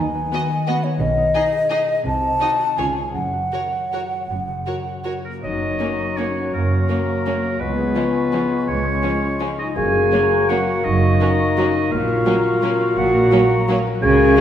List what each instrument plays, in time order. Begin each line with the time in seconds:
Already playing: harp F#3 D#4 B4 D#5, flute G#5
0.00 double bass section D#2, cello section D#3, harp D#3
0.14 harp B3
0.32 viola section B3, violin section F#4 D#5, harp B4
0.50 harp D#5
0.67 viola section B3, violin section F#4 D#5, harp B4, flute F#5
0.84 harp D#4, flute C#5
1.00 double bass section B1, harp B2, cello section B2, flute D#5
1.17 harp D#4
1.35 viola section D#4, violin section G#4 D#5, harp D#5
1.52 harp G#4
1.70 viola section D#4, violin section G#4 D#5, harp D#5
1.88 harp D#4
2.05 double bass section C2, cello section C3, harp C3, flute A5
2.23 harp D#4
2.40 viola section D#4, violin section F#4 D#5, harp D#5
2.59 harp F#4
2.77 double bass section C#2, harp C#3, cello section C#3, viola section F4, violin section G#4 C#5, flute G#5
2.96 harp G#4 C#5
3.13 double bass section F#1, harp F#2, cello section F#2, flute F#5
3.33 harp F#4
3.52 viola section F#4, violin section A#4 C#5, harp C#5
3.73 harp F#5
3.93 viola section F#4, violin section A#4 C#5, harp C#5
4.12 harp F#4
4.30 double bass section F#1, harp F#2, cello section F#2
4.48 harp C#3
4.66 viola section F#4, violin section A#4 C#5, harp C#5
4.86 harp F#5
5.04 viola section F#4, violin section A#4 C#5, harp C#5
5.25 french horn section A#3, harp F#4, oboe A#4
5.43 double bass section F#1, cello section F#2, harp F#2, bassoon F#3, french horn section D#4, clarinet F#4, oboe D#5, flute C#6
5.53 harp F#4
5.62 harp A#4
5.71 harp C#5
5.79 viola section A#3, violin section A#3 C#4, harp F#5
5.89 harp A#5
5.98 harp C#6
6.08 harp A#5
6.17 viola section A#3, violin section A#3 C#4, french horn section C#4, oboe C#5, harp F#5
6.27 harp C#5
6.35 harp A#4
6.45 harp F#4
6.53 double bass section F#1, harp F#2, cello section F#2, french horn section A#3, oboe A#4
6.62 harp C#3
6.71 harp A#4
6.80 harp C#5
6.89 viola section A#3, violin section A#3 C#4, harp F#5
6.98 harp A#5
7.07 harp C#6
7.17 harp A#5
7.26 viola section A#3, violin section A#3 C#4, harp F#5
7.35 harp C#5
7.44 harp A#4
7.52 harp F#4
7.60 double bass section C#2, cello section C#2, harp C#3, bassoon G#3, french horn section B3, clarinet F4, oboe B4, flute C#6
7.69 harp F4
7.78 harp G#4
7.87 harp C#5
7.95 viola section F3, violin section G#3 C#4, harp F5
8.05 harp G#5
8.15 harp C#6
8.24 harp G#5
8.32 viola section F3, violin section G#3 C#4, harp F5
8.41 harp C#5
8.50 harp G#4
8.59 harp F4
8.68 double bass section C#2, cello section C#2, harp C#3, french horn section C#4, oboe C#5
8.76 harp G#3
8.85 harp G#4
8.94 harp C#5
9.03 viola section F3, violin section G#3 C#4, harp F5
9.12 harp G#5
9.22 harp C#6
9.31 harp G#5
9.39 viola section F3, violin section G#3 C#4, harp F5
9.50 harp C#5
9.58 french horn section D#4, harp G#4, oboe D#5
9.68 harp F4
9.76 double bass section F#1, harp F#2, timpani F#2, cello section F#2, bassoon A#3, clarinet F#4, french horn section G#4, oboe G#5, flute C#6
9.85 harp F#4
9.94 harp A#4
10.03 harp C#5
10.12 viola section F#3, violin section A#3 C#4, harp F#5
10.22 harp A#5
10.31 harp C#6
10.40 harp A#5
10.49 viola section F#3, violin section A#3 C#4, french horn section F#4, oboe F#5, harp F#5
10.58 harp C#5
10.67 harp A#4
10.76 harp F#4
10.84 double bass section F#1, harp F#2, cello section F#2, french horn section D#4, oboe D#5
10.93 harp C#3
11.02 harp A#4
11.11 harp C#5
11.20 viola section F#3, violin section A#3 C#4, harp F#5
11.29 harp A#5
11.40 harp C#6
11.48 harp A#5
11.57 viola section F#3, violin section A#3 C#4, harp F#5
11.66 harp C#5
11.74 harp A#4
11.83 harp F#4
11.91 double bass section A#1, harp A#2, cello section A#2, bassoon A#3, french horn section F4, clarinet F#4, oboe F5, flute C#6
11.99 harp F#4
12.08 harp A#4
12.16 harp C#5
12.25 viola section F#3, violin section A#3 C#4, harp F#5
12.35 harp A#5
12.44 harp C#6
12.53 harp A#5
12.62 viola section F#3, violin section A#3 C#4, harp F#5
12.71 harp C#5
12.80 harp A#4
12.89 harp F#4
12.97 double bass section A#1, harp A#2, cello section A#2, french horn section F#4, oboe F#5
13.05 harp A#3
13.14 harp A#4
13.23 harp C#5
13.31 viola section F#3, violin section A#3 C#4, harp F#5
13.42 harp A#5
13.51 harp C#6
13.60 harp A#5
13.68 viola section F#3, violin section A#3 C#4, harp F#5
13.78 harp C#5
13.87 harp A#4
13.95 harp F#4
14.02 double bass section C#2, cello section C#3, harp C#3, bassoon A#3, clarinet F#4, french horn section G#4, oboe G#5, flute C#6
14.11 harp F#4
14.19 harp A#4
14.28 harp E5
14.36 viola section F#3, violin section A#3, harp F#5